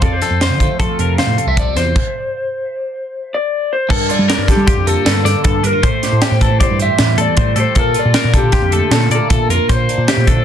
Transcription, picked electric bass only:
0.02 0.20 F2 medium
0.30 0.51 F2 medium
0.50 0.68 D3 medium
0.80 0.89 F3 medium
0.99 1.17 F2 medium
1.27 1.37 A2 medium
1.47 1.74 C2 medium
1.76 1.94 E2 medium
3.90 4.08 G2 loud
4.19 4.28 G3 medium
4.38 4.56 G2 medium
4.57 4.66 G3 medium
4.77 4.95 F2 medium
5.06 5.24 G2 medium
5.24 5.34 G2 medium
5.45 5.63 G2 medium
5.63 5.73 G2 medium
5.84 6.01 A2 medium
6.12 6.21 A2 medium
6.31 6.49 A2 medium
6.50 6.60 A2 medium
6.70 6.88 G2 medium
6.99 7.17 A2 medium
7.18 7.27 A2 medium
7.38 7.56 A2 medium
7.56 7.66 A2 medium
7.76 7.94 A#2 medium
8.05 8.14 A#2 medium
8.24 8.42 A#2 medium
8.43 8.52 A#2 medium
8.62 8.80 F2 medium
8.91 9.09 A#2 medium
9.10 9.20 A#2 medium
9.30 9.48 A#2 medium
9.49 9.58 F2 medium
9.69 9.87 A#2 loud
9.98 10.07 A#2 medium
10.17 10.35 A#2 medium
10.37 10.45 A#2 medium

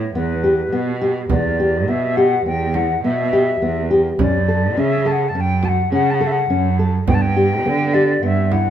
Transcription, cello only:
0.00 0.11 A2 medium
0.15 0.69 E2 medium
0.72 1.26 B2 medium
1.30 1.89 E2 medium
1.88 2.42 B2 medium
2.46 3.00 E2 medium
3.04 3.58 B2 medium
3.61 4.15 E2 medium
4.19 4.78 F#2 medium
4.76 5.30 C#3 medium
5.34 5.88 F#2 medium
5.92 6.46 C#3 medium
6.49 7.03 F#2 medium
7.08 7.68 G2 medium
7.66 8.19 D3 medium
8.23 8.70 G2 medium

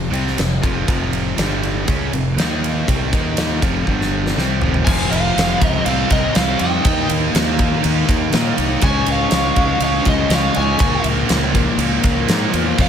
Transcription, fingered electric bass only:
0.10 0.34 C2 medium
0.37 0.60 F1 medium
0.63 0.86 F1 medium
0.88 1.34 F1 medium
1.38 1.84 G1 medium
1.88 2.10 C#2 medium
2.12 2.35 F1 medium
2.36 2.83 D#2 loud
2.88 3.10 C2 medium
3.12 3.58 D#2 medium
3.62 3.85 F1 medium
3.87 4.32 G1 medium
4.37 4.59 C2 medium
4.61 4.84 F1 medium
4.86 5.05 F1 medium
5.11 5.29 F1 medium
5.36 5.54 F1 medium
5.61 5.79 C#2 medium
5.86 6.04 C2 loud
6.10 6.28 C2 medium
6.36 6.54 C2 loud
6.60 6.78 F2 medium
6.85 7.03 D#2 loud
7.10 7.28 D#2 medium
7.34 7.71 D#2 medium
7.84 8.02 D#2 loud
8.09 8.27 D#2 medium
8.33 8.51 A#2 medium
8.58 8.76 C2 medium
8.82 9.00 C#2 loud
9.07 9.25 C#2 loud
9.31 9.50 C#2 medium
9.57 9.75 C#2 medium
9.80 9.99 C#2 medium
10.06 10.24 C#2 medium
10.29 10.48 C#2 medium
10.57 10.75 C#2 medium
10.80 10.99 C#2 loud
11.04 11.23 C#2 medium
11.30 11.67 C#2 medium
11.77 11.97 C#2 medium
12.04 12.22 C#2 medium
12.28 12.47 G#2 medium
12.53 12.72 E2 medium
12.78 12.89 F1 loud

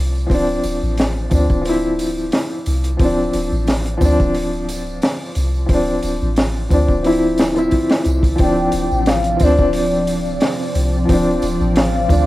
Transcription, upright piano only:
0.00 0.25 F3 medium
0.00 0.27 C4 medium
0.00 0.29 D4 loud
0.27 1.26 F3 medium
0.27 1.28 C4 medium
0.34 1.30 D4 medium
1.30 1.60 F3 medium
1.30 1.62 C4 medium
1.30 1.63 D4 medium
1.61 2.94 F3 medium
1.61 2.96 C4 medium
1.69 2.98 E4 medium
2.97 3.96 F3 medium
2.97 3.98 C4 medium
3.04 4.00 D4 medium
3.97 5.64 F3 medium
3.97 5.66 C4 medium
4.05 5.68 D4 loud
5.66 6.65 F3 medium
5.66 6.67 C4 medium
5.74 6.69 D4 medium
6.69 7.00 F3 medium
6.69 7.01 C4 medium
6.73 7.02 D4 medium
7.03 7.52 F3 medium
7.03 7.53 C4 medium
7.03 7.54 E4 medium
7.55 7.70 F3 medium
7.55 7.71 C4 medium
7.55 7.72 E4 medium
8.36 9.35 F3 medium
8.36 9.37 C4 medium
8.44 9.39 D4 medium
9.37 11.03 F3 medium
9.37 11.05 C4 medium
9.44 11.07 D4 loud
11.05 12.05 F3 medium
11.05 12.06 C4 medium
11.13 12.09 D4 medium
12.08 12.26 F3 medium
12.08 12.26 C4 medium
12.08 12.26 D4 medium

